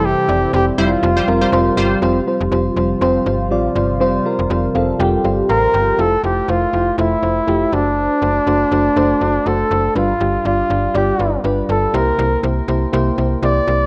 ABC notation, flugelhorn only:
X:1
M:4/4
L:1/8
Q:"Swing 16ths" 1/4=121
K:F
V:1 name="Flugelhorn"
G2 G F4 z | z8 | z6 B2 | A G F2 E3 D- |
D6 A2 | F2 F2 G2 z A | B2 z4 d2 |]